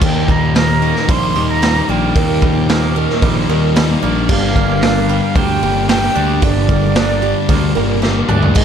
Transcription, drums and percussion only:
0.01 kick, crash
0.28 kick
0.55 snare, open hi-hat
0.96 snare
1.08 kick, open hi-hat
1.62 snare, open hi-hat
2.16 kick, open hi-hat
2.42 kick
2.69 snare, open hi-hat
3.10 snare
3.22 kick, open hi-hat
3.76 snare, open hi-hat
4.29 kick, crash
4.56 kick
4.82 snare, open hi-hat
5.35 kick, open hi-hat
5.89 snare, open hi-hat
6.42 kick, open hi-hat
6.69 kick
6.95 snare, open hi-hat
7.49 kick, open hi-hat
8.03 snare
8.29 mid tom
8.42 floor tom
8.56 kick, crash

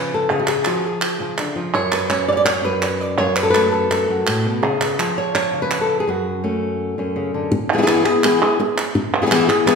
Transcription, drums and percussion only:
0.30 clap
0.47 clap
0.65 clap
1.02 clap
1.38 clap
1.92 clap
2.10 clap
2.46 clap
2.82 clap
3.36 clap
3.55 clap
3.91 clap
4.27 clap
4.81 clap
5.00 clap
5.35 clap
5.71 clap
7.88 clap
8.06 clap
8.24 clap
8.42 clap
8.78 clap
9.31 clap
9.50 clap
9.68 clap

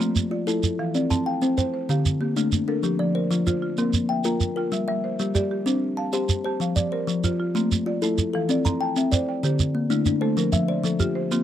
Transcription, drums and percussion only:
0.01 shekere
0.16 shekere
0.48 shekere
0.63 shekere
0.95 shekere
1.11 shekere
1.42 shekere
1.58 shekere
1.90 shekere
2.06 shekere
2.37 shekere
2.52 shekere
2.83 shekere
3.31 shekere
3.47 shekere
3.78 shekere
3.93 shekere
4.24 shekere
4.40 shekere
4.72 shekere
5.20 shekere
5.35 shekere
5.67 shekere
6.13 shekere
6.29 shekere
6.61 shekere
6.76 shekere
7.08 shekere
7.24 shekere
7.56 shekere
7.72 shekere
8.03 shekere
8.18 shekere
8.50 shekere
8.66 shekere
8.96 shekere
9.12 shekere
9.44 shekere
9.60 shekere
9.91 shekere
10.06 shekere
10.38 shekere
10.53 shekere
10.85 shekere
11.00 shekere
11.32 shekere

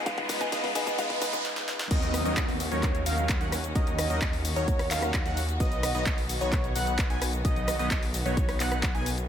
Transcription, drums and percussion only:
0.06 kick, closed hi-hat, shaker
0.18 kick, closed hi-hat
0.29 kick, open hi-hat, shaker
0.41 kick, closed hi-hat, shaker
0.52 kick, closed hi-hat, shaker
0.64 kick, open hi-hat
0.75 kick, open hi-hat, shaker
0.87 kick, closed hi-hat, shaker
0.98 kick, closed hi-hat, shaker
1.10 kick, open hi-hat
1.22 kick, open hi-hat, shaker
1.33 kick, closed hi-hat, shaker
1.45 snare
1.56 snare
1.68 snare
1.79 snare
1.91 kick, closed hi-hat, crash, shaker
2.02 closed hi-hat, shaker
2.14 cross-stick, open hi-hat, shaker
2.26 shaker
2.37 kick, clap, closed hi-hat, shaker
2.49 open hi-hat, shaker
2.60 open hi-hat, shaker
2.72 closed hi-hat, shaker
2.83 kick, clap, closed hi-hat, shaker
2.95 closed hi-hat, shaker
3.06 open hi-hat, shaker
3.18 closed hi-hat, shaker
3.29 kick, clap, closed hi-hat, shaker
3.41 closed hi-hat, shaker
3.52 cross-stick, open hi-hat, shaker
3.64 closed hi-hat, shaker
3.75 kick, closed hi-hat, shaker
3.87 closed hi-hat, shaker
3.99 cross-stick, open hi-hat, shaker
4.10 closed hi-hat, shaker
4.22 kick, clap, closed hi-hat, shaker
4.33 open hi-hat, shaker
4.45 open hi-hat, shaker
4.56 closed hi-hat, shaker
4.68 kick, closed hi-hat, shaker
4.79 cross-stick, open hi-hat, shaker
4.91 clap, open hi-hat, shaker
5.02 cross-stick, closed hi-hat, shaker
5.14 kick, clap, closed hi-hat, shaker
5.26 closed hi-hat, shaker
5.37 open hi-hat, shaker
5.49 closed hi-hat, shaker
5.60 kick, closed hi-hat, shaker
5.72 closed hi-hat, shaker
5.83 cross-stick, open hi-hat, shaker
5.95 shaker
6.06 kick, clap, closed hi-hat, shaker
6.18 open hi-hat, shaker
6.29 open hi-hat, shaker
6.41 closed hi-hat, shaker
6.53 kick, clap, closed hi-hat, shaker
6.64 closed hi-hat, shaker
6.76 open hi-hat, shaker
6.87 closed hi-hat, shaker
6.99 kick, clap, closed hi-hat, shaker
7.10 closed hi-hat, shaker
7.22 cross-stick, open hi-hat, shaker
7.33 closed hi-hat, shaker
7.45 kick, closed hi-hat, shaker
7.56 closed hi-hat, shaker
7.68 cross-stick, open hi-hat, shaker
7.79 closed hi-hat, shaker
7.91 kick, clap, closed hi-hat, shaker
8.03 open hi-hat, shaker
8.14 open hi-hat, shaker
8.26 closed hi-hat, shaker
8.37 kick, closed hi-hat, shaker
8.49 cross-stick, open hi-hat, shaker
8.60 clap, open hi-hat, shaker
8.72 cross-stick, closed hi-hat, shaker
8.83 kick, clap, closed hi-hat, shaker
8.95 closed hi-hat, shaker
9.06 open hi-hat, shaker
9.18 closed hi-hat, shaker

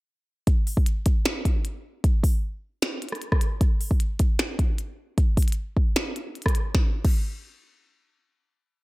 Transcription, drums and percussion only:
0.47 kick, closed hi-hat
0.67 open hi-hat
0.77 kick
0.86 closed hi-hat
1.06 kick, closed hi-hat
1.25 snare, closed hi-hat
1.45 kick, closed hi-hat
1.65 closed hi-hat
2.04 kick, closed hi-hat
2.24 kick, open hi-hat
2.82 snare, closed hi-hat
3.02 closed hi-hat
3.09 cross-stick, closed hi-hat
3.15 closed hi-hat
3.22 closed hi-hat
3.32 kick, cross-stick
3.41 closed hi-hat
3.61 kick, closed hi-hat
3.81 open hi-hat
3.91 kick
4.00 closed hi-hat
4.19 kick, closed hi-hat
4.39 snare, closed hi-hat
4.59 kick, closed hi-hat
4.78 closed hi-hat
5.18 kick, closed hi-hat
5.37 kick, closed hi-hat, open hi-hat
5.43 closed hi-hat
5.48 closed hi-hat
5.52 closed hi-hat
5.77 kick
5.96 snare, closed hi-hat
6.16 closed hi-hat
6.35 closed hi-hat
6.42 kick, cross-stick, closed hi-hat
6.48 closed hi-hat
6.55 closed hi-hat
6.75 kick, snare
7.05 kick, crash

